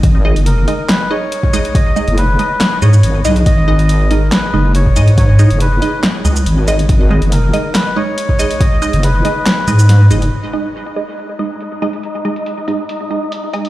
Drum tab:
HH |x--xx-x-x---x-xx|x--xx-x-x---x-xx|x--xx-x-x---x-xx|x--xx-x-x---x-xx|
SH |--------------x-|--x-------xx--x-|--------------x-|--x-------xx--x-|
CP |--------x-------|--------x-------|--------x-------|--------x-------|
SD |--------o-------|--------o-------|--------o-------|--------o-------|
BD |o------------o--|o---------------|o------------o--|o---------------|

HH |x--xx-x-x---x-xx|x--xx-x-x---x-xx|x---x-x-x---x-xx|x--xx-x-x---x-xx|
SH |--------------x-|--x-------xx--x-|----------------|----------------|
CP |--------x-------|--------x-------|----------------|----------------|
SD |--------o-------|--------o---o---|----------------|----------------|
BD |o------------o--|o---------------|----------------|----------------|